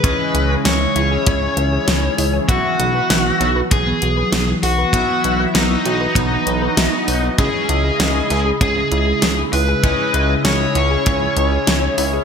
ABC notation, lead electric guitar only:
X:1
M:4/4
L:1/8
Q:1/4=98
K:C#m
V:1 name="Lead electric guitar"
B2 c6 | F4 G3 F- | F2 D6 | G4 G3 B- |
B2 c6 |]